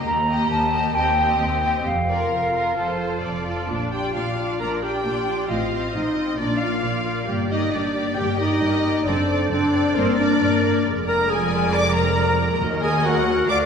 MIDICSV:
0, 0, Header, 1, 9, 480
1, 0, Start_track
1, 0, Key_signature, -2, "major"
1, 0, Tempo, 444444
1, 68, Time_signature, 4, 2, 24, 8
1, 1509, Tempo, 457666
1, 4869, Tempo, 444774
1, 14642, End_track
2, 0, Start_track
2, 0, Title_t, "Flute"
2, 0, Program_c, 0, 73
2, 68, Note_on_c, 0, 82, 57
2, 512, Note_off_c, 0, 82, 0
2, 547, Note_on_c, 0, 81, 71
2, 1025, Note_on_c, 0, 79, 62
2, 1041, Note_off_c, 0, 81, 0
2, 1504, Note_off_c, 0, 79, 0
2, 1510, Note_on_c, 0, 79, 52
2, 1978, Note_off_c, 0, 79, 0
2, 1991, Note_on_c, 0, 77, 45
2, 3646, Note_off_c, 0, 77, 0
2, 14642, End_track
3, 0, Start_track
3, 0, Title_t, "Violin section"
3, 0, Program_c, 1, 48
3, 305, Note_on_c, 1, 67, 36
3, 775, Note_off_c, 1, 67, 0
3, 791, Note_on_c, 1, 67, 35
3, 1019, Note_off_c, 1, 67, 0
3, 1032, Note_on_c, 1, 67, 41
3, 1253, Note_off_c, 1, 67, 0
3, 1266, Note_on_c, 1, 67, 37
3, 1731, Note_off_c, 1, 67, 0
3, 1743, Note_on_c, 1, 67, 30
3, 1981, Note_off_c, 1, 67, 0
3, 2235, Note_on_c, 1, 70, 33
3, 2692, Note_off_c, 1, 70, 0
3, 2705, Note_on_c, 1, 70, 26
3, 2944, Note_off_c, 1, 70, 0
3, 2954, Note_on_c, 1, 69, 30
3, 3186, Note_off_c, 1, 69, 0
3, 3198, Note_on_c, 1, 69, 26
3, 3670, Note_off_c, 1, 69, 0
3, 3688, Note_on_c, 1, 69, 28
3, 3918, Note_off_c, 1, 69, 0
3, 4161, Note_on_c, 1, 79, 37
3, 4381, Note_off_c, 1, 79, 0
3, 4400, Note_on_c, 1, 77, 32
3, 4862, Note_off_c, 1, 77, 0
3, 4881, Note_on_c, 1, 82, 39
3, 4968, Note_off_c, 1, 82, 0
3, 5119, Note_on_c, 1, 79, 36
3, 5823, Note_off_c, 1, 79, 0
3, 5841, Note_on_c, 1, 77, 34
3, 6307, Note_off_c, 1, 77, 0
3, 6307, Note_on_c, 1, 75, 41
3, 6791, Note_off_c, 1, 75, 0
3, 6796, Note_on_c, 1, 74, 41
3, 7022, Note_on_c, 1, 77, 42
3, 7032, Note_off_c, 1, 74, 0
3, 7750, Note_off_c, 1, 77, 0
3, 8005, Note_on_c, 1, 75, 41
3, 8227, Note_off_c, 1, 75, 0
3, 8235, Note_on_c, 1, 74, 40
3, 8712, Note_on_c, 1, 79, 49
3, 8719, Note_off_c, 1, 74, 0
3, 8958, Note_off_c, 1, 79, 0
3, 8961, Note_on_c, 1, 75, 51
3, 9671, Note_off_c, 1, 75, 0
3, 9681, Note_on_c, 1, 74, 42
3, 10155, Note_off_c, 1, 74, 0
3, 10168, Note_on_c, 1, 74, 47
3, 10641, Note_off_c, 1, 74, 0
3, 10660, Note_on_c, 1, 72, 53
3, 10883, Note_on_c, 1, 74, 57
3, 10897, Note_off_c, 1, 72, 0
3, 11595, Note_off_c, 1, 74, 0
3, 11853, Note_on_c, 1, 82, 54
3, 12074, Note_off_c, 1, 82, 0
3, 12087, Note_on_c, 1, 80, 58
3, 12561, Note_off_c, 1, 80, 0
3, 12561, Note_on_c, 1, 86, 70
3, 12790, Note_on_c, 1, 82, 54
3, 12800, Note_off_c, 1, 86, 0
3, 13493, Note_off_c, 1, 82, 0
3, 13740, Note_on_c, 1, 80, 52
3, 13968, Note_off_c, 1, 80, 0
3, 13991, Note_on_c, 1, 78, 59
3, 14462, Note_on_c, 1, 86, 62
3, 14471, Note_off_c, 1, 78, 0
3, 14548, Note_off_c, 1, 86, 0
3, 14642, End_track
4, 0, Start_track
4, 0, Title_t, "Violin section"
4, 0, Program_c, 2, 48
4, 309, Note_on_c, 2, 75, 43
4, 771, Note_off_c, 2, 75, 0
4, 784, Note_on_c, 2, 75, 37
4, 1015, Note_off_c, 2, 75, 0
4, 1028, Note_on_c, 2, 75, 41
4, 1256, Note_off_c, 2, 75, 0
4, 1269, Note_on_c, 2, 75, 41
4, 1731, Note_off_c, 2, 75, 0
4, 1744, Note_on_c, 2, 75, 29
4, 1981, Note_off_c, 2, 75, 0
4, 2227, Note_on_c, 2, 74, 30
4, 2417, Note_off_c, 2, 74, 0
4, 2466, Note_on_c, 2, 70, 38
4, 2917, Note_off_c, 2, 70, 0
4, 2956, Note_on_c, 2, 72, 43
4, 3428, Note_off_c, 2, 72, 0
4, 3430, Note_on_c, 2, 74, 36
4, 3902, Note_off_c, 2, 74, 0
4, 3915, Note_on_c, 2, 74, 33
4, 4143, Note_off_c, 2, 74, 0
4, 4156, Note_on_c, 2, 74, 29
4, 4390, Note_off_c, 2, 74, 0
4, 4401, Note_on_c, 2, 74, 29
4, 4619, Note_off_c, 2, 74, 0
4, 4631, Note_on_c, 2, 74, 27
4, 4863, Note_off_c, 2, 74, 0
4, 4875, Note_on_c, 2, 74, 37
4, 5097, Note_off_c, 2, 74, 0
4, 5110, Note_on_c, 2, 74, 28
4, 5344, Note_off_c, 2, 74, 0
4, 5357, Note_on_c, 2, 74, 30
4, 5591, Note_off_c, 2, 74, 0
4, 5603, Note_on_c, 2, 74, 30
4, 5830, Note_on_c, 2, 75, 31
4, 5833, Note_off_c, 2, 74, 0
4, 6066, Note_off_c, 2, 75, 0
4, 6095, Note_on_c, 2, 75, 30
4, 6306, Note_off_c, 2, 75, 0
4, 6319, Note_on_c, 2, 75, 31
4, 6551, Note_off_c, 2, 75, 0
4, 6568, Note_on_c, 2, 75, 29
4, 6796, Note_off_c, 2, 75, 0
4, 6808, Note_on_c, 2, 74, 36
4, 7032, Note_off_c, 2, 74, 0
4, 7045, Note_on_c, 2, 74, 33
4, 7253, Note_off_c, 2, 74, 0
4, 7265, Note_on_c, 2, 74, 34
4, 7487, Note_off_c, 2, 74, 0
4, 7500, Note_on_c, 2, 74, 31
4, 7743, Note_off_c, 2, 74, 0
4, 7757, Note_on_c, 2, 74, 36
4, 7979, Note_off_c, 2, 74, 0
4, 7992, Note_on_c, 2, 74, 36
4, 8223, Note_off_c, 2, 74, 0
4, 8236, Note_on_c, 2, 74, 36
4, 8459, Note_off_c, 2, 74, 0
4, 8471, Note_on_c, 2, 74, 34
4, 8704, Note_off_c, 2, 74, 0
4, 8717, Note_on_c, 2, 74, 39
4, 8947, Note_off_c, 2, 74, 0
4, 8960, Note_on_c, 2, 74, 36
4, 9192, Note_off_c, 2, 74, 0
4, 9205, Note_on_c, 2, 74, 39
4, 9429, Note_off_c, 2, 74, 0
4, 9442, Note_on_c, 2, 74, 34
4, 9672, Note_off_c, 2, 74, 0
4, 9685, Note_on_c, 2, 74, 44
4, 9916, Note_off_c, 2, 74, 0
4, 9929, Note_on_c, 2, 74, 42
4, 10152, Note_off_c, 2, 74, 0
4, 10165, Note_on_c, 2, 74, 42
4, 10393, Note_off_c, 2, 74, 0
4, 10406, Note_on_c, 2, 74, 42
4, 10631, Note_off_c, 2, 74, 0
4, 10644, Note_on_c, 2, 74, 47
4, 10871, Note_off_c, 2, 74, 0
4, 10884, Note_on_c, 2, 74, 39
4, 11116, Note_off_c, 2, 74, 0
4, 11129, Note_on_c, 2, 74, 49
4, 11361, Note_off_c, 2, 74, 0
4, 11374, Note_on_c, 2, 74, 38
4, 11610, Note_off_c, 2, 74, 0
4, 11625, Note_on_c, 2, 74, 51
4, 13475, Note_off_c, 2, 74, 0
4, 13507, Note_on_c, 2, 75, 51
4, 14425, Note_off_c, 2, 75, 0
4, 14463, Note_on_c, 2, 77, 51
4, 14642, Note_off_c, 2, 77, 0
4, 14642, End_track
5, 0, Start_track
5, 0, Title_t, "Clarinet"
5, 0, Program_c, 3, 71
5, 4157, Note_on_c, 3, 67, 40
5, 4394, Note_on_c, 3, 65, 41
5, 4410, Note_off_c, 3, 67, 0
5, 4873, Note_on_c, 3, 70, 49
5, 4889, Note_off_c, 3, 65, 0
5, 5113, Note_on_c, 3, 67, 44
5, 5129, Note_off_c, 3, 70, 0
5, 5837, Note_on_c, 3, 65, 39
5, 5854, Note_off_c, 3, 67, 0
5, 6315, Note_off_c, 3, 65, 0
5, 6324, Note_on_c, 3, 63, 47
5, 6790, Note_off_c, 3, 63, 0
5, 6806, Note_on_c, 3, 62, 43
5, 7049, Note_on_c, 3, 65, 47
5, 7065, Note_off_c, 3, 62, 0
5, 7763, Note_off_c, 3, 65, 0
5, 8009, Note_on_c, 3, 63, 47
5, 8256, Note_on_c, 3, 62, 46
5, 8272, Note_off_c, 3, 63, 0
5, 8718, Note_off_c, 3, 62, 0
5, 8725, Note_on_c, 3, 67, 60
5, 8832, Note_off_c, 3, 67, 0
5, 8970, Note_on_c, 3, 63, 66
5, 9688, Note_on_c, 3, 62, 53
5, 9704, Note_off_c, 3, 63, 0
5, 10168, Note_off_c, 3, 62, 0
5, 10176, Note_on_c, 3, 62, 68
5, 10659, Note_on_c, 3, 60, 66
5, 10675, Note_off_c, 3, 62, 0
5, 10897, Note_off_c, 3, 60, 0
5, 10906, Note_on_c, 3, 62, 69
5, 11607, Note_off_c, 3, 62, 0
5, 11858, Note_on_c, 3, 70, 68
5, 12097, Note_on_c, 3, 68, 64
5, 12113, Note_off_c, 3, 70, 0
5, 12562, Note_off_c, 3, 68, 0
5, 12568, Note_on_c, 3, 74, 71
5, 12674, Note_off_c, 3, 74, 0
5, 12809, Note_on_c, 3, 70, 65
5, 13503, Note_off_c, 3, 70, 0
5, 13748, Note_on_c, 3, 68, 67
5, 13998, Note_on_c, 3, 66, 73
5, 14014, Note_off_c, 3, 68, 0
5, 14469, Note_off_c, 3, 66, 0
5, 14476, Note_on_c, 3, 74, 70
5, 14642, Note_off_c, 3, 74, 0
5, 14642, End_track
6, 0, Start_track
6, 0, Title_t, "Viola section"
6, 0, Program_c, 4, 48
6, 307, Note_on_c, 4, 58, 37
6, 771, Note_off_c, 4, 58, 0
6, 784, Note_on_c, 4, 58, 36
6, 1021, Note_off_c, 4, 58, 0
6, 1023, Note_on_c, 4, 60, 36
6, 1252, Note_off_c, 4, 60, 0
6, 1265, Note_on_c, 4, 60, 38
6, 1733, Note_off_c, 4, 60, 0
6, 1745, Note_on_c, 4, 60, 32
6, 1982, Note_off_c, 4, 60, 0
6, 2230, Note_on_c, 4, 65, 29
6, 2695, Note_off_c, 4, 65, 0
6, 2708, Note_on_c, 4, 65, 31
6, 2939, Note_off_c, 4, 65, 0
6, 2951, Note_on_c, 4, 65, 28
6, 3184, Note_off_c, 4, 65, 0
6, 3197, Note_on_c, 4, 65, 25
6, 3669, Note_off_c, 4, 65, 0
6, 3684, Note_on_c, 4, 65, 27
6, 3903, Note_off_c, 4, 65, 0
6, 3915, Note_on_c, 4, 65, 27
6, 3918, Note_on_c, 4, 62, 31
6, 4149, Note_off_c, 4, 62, 0
6, 4150, Note_off_c, 4, 65, 0
6, 4161, Note_on_c, 4, 62, 25
6, 4162, Note_on_c, 4, 65, 25
6, 4384, Note_off_c, 4, 62, 0
6, 4387, Note_off_c, 4, 65, 0
6, 4396, Note_on_c, 4, 62, 26
6, 4400, Note_on_c, 4, 65, 29
6, 4621, Note_off_c, 4, 62, 0
6, 4624, Note_off_c, 4, 65, 0
6, 4634, Note_on_c, 4, 62, 29
6, 4636, Note_on_c, 4, 65, 29
6, 4855, Note_off_c, 4, 65, 0
6, 4860, Note_off_c, 4, 62, 0
6, 4868, Note_on_c, 4, 65, 29
6, 4873, Note_on_c, 4, 62, 30
6, 5096, Note_off_c, 4, 62, 0
6, 5101, Note_off_c, 4, 65, 0
6, 5109, Note_on_c, 4, 62, 25
6, 5114, Note_on_c, 4, 65, 28
6, 5328, Note_off_c, 4, 62, 0
6, 5330, Note_off_c, 4, 65, 0
6, 5341, Note_on_c, 4, 62, 33
6, 5343, Note_on_c, 4, 65, 32
6, 5574, Note_off_c, 4, 65, 0
6, 5575, Note_off_c, 4, 62, 0
6, 5586, Note_on_c, 4, 65, 29
6, 5588, Note_on_c, 4, 62, 29
6, 5813, Note_off_c, 4, 65, 0
6, 5825, Note_off_c, 4, 62, 0
6, 5826, Note_on_c, 4, 65, 31
6, 5829, Note_on_c, 4, 60, 29
6, 6057, Note_off_c, 4, 65, 0
6, 6062, Note_off_c, 4, 60, 0
6, 6070, Note_on_c, 4, 65, 29
6, 6075, Note_on_c, 4, 60, 25
6, 6290, Note_off_c, 4, 65, 0
6, 6291, Note_off_c, 4, 60, 0
6, 6303, Note_on_c, 4, 65, 28
6, 6304, Note_on_c, 4, 60, 32
6, 6536, Note_off_c, 4, 60, 0
6, 6536, Note_off_c, 4, 65, 0
6, 6549, Note_on_c, 4, 60, 30
6, 6549, Note_on_c, 4, 65, 31
6, 6769, Note_off_c, 4, 65, 0
6, 6780, Note_on_c, 4, 58, 32
6, 6782, Note_on_c, 4, 65, 36
6, 6787, Note_off_c, 4, 60, 0
6, 7019, Note_off_c, 4, 58, 0
6, 7021, Note_off_c, 4, 65, 0
6, 7032, Note_on_c, 4, 58, 30
6, 7034, Note_on_c, 4, 65, 33
6, 7249, Note_off_c, 4, 58, 0
6, 7250, Note_off_c, 4, 65, 0
6, 7262, Note_on_c, 4, 58, 37
6, 7263, Note_on_c, 4, 65, 38
6, 7497, Note_off_c, 4, 65, 0
6, 7500, Note_off_c, 4, 58, 0
6, 7510, Note_on_c, 4, 65, 32
6, 7513, Note_on_c, 4, 58, 31
6, 7735, Note_off_c, 4, 58, 0
6, 7745, Note_on_c, 4, 67, 35
6, 7748, Note_off_c, 4, 65, 0
6, 7748, Note_on_c, 4, 58, 36
6, 7977, Note_off_c, 4, 58, 0
6, 7978, Note_off_c, 4, 67, 0
6, 7990, Note_on_c, 4, 58, 30
6, 7991, Note_on_c, 4, 67, 30
6, 8224, Note_off_c, 4, 58, 0
6, 8225, Note_off_c, 4, 67, 0
6, 8237, Note_on_c, 4, 58, 35
6, 8238, Note_on_c, 4, 67, 32
6, 8472, Note_off_c, 4, 58, 0
6, 8476, Note_off_c, 4, 67, 0
6, 8485, Note_on_c, 4, 58, 36
6, 8487, Note_on_c, 4, 67, 36
6, 8715, Note_off_c, 4, 58, 0
6, 8720, Note_off_c, 4, 67, 0
6, 8727, Note_on_c, 4, 58, 38
6, 8731, Note_on_c, 4, 67, 40
6, 8955, Note_off_c, 4, 67, 0
6, 8956, Note_off_c, 4, 58, 0
6, 8968, Note_on_c, 4, 67, 36
6, 8969, Note_on_c, 4, 58, 34
6, 9194, Note_off_c, 4, 67, 0
6, 9196, Note_off_c, 4, 58, 0
6, 9207, Note_on_c, 4, 67, 40
6, 9209, Note_on_c, 4, 58, 46
6, 9438, Note_off_c, 4, 58, 0
6, 9438, Note_off_c, 4, 67, 0
6, 9451, Note_on_c, 4, 58, 36
6, 9451, Note_on_c, 4, 67, 37
6, 9683, Note_on_c, 4, 60, 36
6, 9683, Note_on_c, 4, 69, 45
6, 9685, Note_off_c, 4, 58, 0
6, 9685, Note_off_c, 4, 67, 0
6, 9920, Note_off_c, 4, 60, 0
6, 9920, Note_off_c, 4, 69, 0
6, 9931, Note_on_c, 4, 69, 36
6, 9933, Note_on_c, 4, 60, 37
6, 10154, Note_off_c, 4, 60, 0
6, 10156, Note_off_c, 4, 69, 0
6, 10166, Note_on_c, 4, 60, 42
6, 10169, Note_on_c, 4, 69, 44
6, 10391, Note_off_c, 4, 60, 0
6, 10394, Note_off_c, 4, 69, 0
6, 10404, Note_on_c, 4, 60, 36
6, 10407, Note_on_c, 4, 69, 41
6, 10643, Note_off_c, 4, 60, 0
6, 10645, Note_off_c, 4, 69, 0
6, 10648, Note_on_c, 4, 58, 46
6, 10648, Note_on_c, 4, 70, 45
6, 10881, Note_off_c, 4, 58, 0
6, 10881, Note_off_c, 4, 70, 0
6, 10894, Note_on_c, 4, 58, 41
6, 10894, Note_on_c, 4, 70, 42
6, 11127, Note_off_c, 4, 58, 0
6, 11127, Note_off_c, 4, 70, 0
6, 11139, Note_on_c, 4, 58, 50
6, 11140, Note_on_c, 4, 70, 47
6, 11368, Note_off_c, 4, 70, 0
6, 11370, Note_off_c, 4, 58, 0
6, 11381, Note_on_c, 4, 70, 44
6, 11383, Note_on_c, 4, 58, 37
6, 11613, Note_off_c, 4, 70, 0
6, 11614, Note_off_c, 4, 58, 0
6, 11631, Note_on_c, 4, 70, 51
6, 11632, Note_on_c, 4, 56, 48
6, 13478, Note_off_c, 4, 56, 0
6, 13509, Note_on_c, 4, 54, 49
6, 14426, Note_off_c, 4, 54, 0
6, 14473, Note_on_c, 4, 53, 51
6, 14642, Note_off_c, 4, 53, 0
6, 14642, Note_off_c, 4, 70, 0
6, 14642, End_track
7, 0, Start_track
7, 0, Title_t, "Timpani"
7, 0, Program_c, 5, 47
7, 13511, Note_on_c, 5, 51, 46
7, 14187, Note_off_c, 5, 51, 0
7, 14642, End_track
8, 0, Start_track
8, 0, Title_t, "Cello section"
8, 0, Program_c, 6, 48
8, 68, Note_on_c, 6, 39, 54
8, 488, Note_off_c, 6, 39, 0
8, 547, Note_on_c, 6, 39, 45
8, 970, Note_off_c, 6, 39, 0
8, 1019, Note_on_c, 6, 39, 43
8, 1449, Note_off_c, 6, 39, 0
8, 1504, Note_on_c, 6, 39, 41
8, 1928, Note_off_c, 6, 39, 0
8, 1987, Note_on_c, 6, 41, 38
8, 2413, Note_off_c, 6, 41, 0
8, 2467, Note_on_c, 6, 41, 33
8, 2894, Note_off_c, 6, 41, 0
8, 2953, Note_on_c, 6, 41, 31
8, 3379, Note_off_c, 6, 41, 0
8, 3436, Note_on_c, 6, 41, 34
8, 3861, Note_off_c, 6, 41, 0
8, 3926, Note_on_c, 6, 46, 40
8, 4321, Note_off_c, 6, 46, 0
8, 4398, Note_on_c, 6, 46, 37
8, 4793, Note_off_c, 6, 46, 0
8, 4876, Note_on_c, 6, 46, 33
8, 5277, Note_off_c, 6, 46, 0
8, 5354, Note_on_c, 6, 46, 37
8, 5756, Note_off_c, 6, 46, 0
8, 5838, Note_on_c, 6, 45, 45
8, 6237, Note_off_c, 6, 45, 0
8, 6314, Note_on_c, 6, 45, 40
8, 6716, Note_off_c, 6, 45, 0
8, 6796, Note_on_c, 6, 46, 39
8, 7199, Note_off_c, 6, 46, 0
8, 7279, Note_on_c, 6, 46, 45
8, 7680, Note_off_c, 6, 46, 0
8, 7756, Note_on_c, 6, 43, 47
8, 8161, Note_off_c, 6, 43, 0
8, 8237, Note_on_c, 6, 43, 41
8, 8642, Note_off_c, 6, 43, 0
8, 8718, Note_on_c, 6, 43, 42
8, 9123, Note_off_c, 6, 43, 0
8, 9198, Note_on_c, 6, 43, 45
8, 9605, Note_off_c, 6, 43, 0
8, 9679, Note_on_c, 6, 42, 54
8, 10085, Note_off_c, 6, 42, 0
8, 10165, Note_on_c, 6, 42, 51
8, 10570, Note_off_c, 6, 42, 0
8, 10649, Note_on_c, 6, 43, 56
8, 11054, Note_off_c, 6, 43, 0
8, 11135, Note_on_c, 6, 43, 60
8, 11537, Note_off_c, 6, 43, 0
8, 11607, Note_on_c, 6, 41, 54
8, 13466, Note_off_c, 6, 41, 0
8, 13511, Note_on_c, 6, 39, 52
8, 14470, Note_off_c, 6, 39, 0
8, 14470, Note_on_c, 6, 38, 48
8, 14642, Note_off_c, 6, 38, 0
8, 14642, End_track
9, 0, Start_track
9, 0, Title_t, "Double bass section"
9, 0, Program_c, 7, 48
9, 67, Note_on_c, 7, 39, 46
9, 488, Note_off_c, 7, 39, 0
9, 547, Note_on_c, 7, 39, 46
9, 970, Note_off_c, 7, 39, 0
9, 1032, Note_on_c, 7, 39, 51
9, 1455, Note_off_c, 7, 39, 0
9, 1511, Note_on_c, 7, 39, 42
9, 1932, Note_off_c, 7, 39, 0
9, 1989, Note_on_c, 7, 29, 46
9, 2414, Note_off_c, 7, 29, 0
9, 2478, Note_on_c, 7, 29, 37
9, 2900, Note_off_c, 7, 29, 0
9, 2961, Note_on_c, 7, 29, 37
9, 3384, Note_off_c, 7, 29, 0
9, 3447, Note_on_c, 7, 29, 31
9, 3867, Note_off_c, 7, 29, 0
9, 3922, Note_on_c, 7, 34, 44
9, 4320, Note_off_c, 7, 34, 0
9, 4401, Note_on_c, 7, 34, 38
9, 4795, Note_off_c, 7, 34, 0
9, 4869, Note_on_c, 7, 34, 36
9, 5273, Note_off_c, 7, 34, 0
9, 5361, Note_on_c, 7, 34, 38
9, 5760, Note_off_c, 7, 34, 0
9, 5833, Note_on_c, 7, 33, 47
9, 6234, Note_off_c, 7, 33, 0
9, 6319, Note_on_c, 7, 33, 40
9, 6718, Note_off_c, 7, 33, 0
9, 6794, Note_on_c, 7, 34, 41
9, 7198, Note_off_c, 7, 34, 0
9, 7277, Note_on_c, 7, 34, 44
9, 7678, Note_off_c, 7, 34, 0
9, 7753, Note_on_c, 7, 31, 45
9, 8159, Note_off_c, 7, 31, 0
9, 8242, Note_on_c, 7, 31, 49
9, 8645, Note_off_c, 7, 31, 0
9, 8723, Note_on_c, 7, 31, 51
9, 9126, Note_off_c, 7, 31, 0
9, 9201, Note_on_c, 7, 31, 47
9, 9607, Note_off_c, 7, 31, 0
9, 9687, Note_on_c, 7, 30, 55
9, 10089, Note_off_c, 7, 30, 0
9, 10177, Note_on_c, 7, 30, 53
9, 10577, Note_off_c, 7, 30, 0
9, 10656, Note_on_c, 7, 31, 50
9, 11058, Note_off_c, 7, 31, 0
9, 11140, Note_on_c, 7, 31, 55
9, 11540, Note_off_c, 7, 31, 0
9, 11620, Note_on_c, 7, 29, 59
9, 13473, Note_off_c, 7, 29, 0
9, 13514, Note_on_c, 7, 39, 55
9, 14471, Note_off_c, 7, 39, 0
9, 14477, Note_on_c, 7, 38, 50
9, 14642, Note_off_c, 7, 38, 0
9, 14642, End_track
0, 0, End_of_file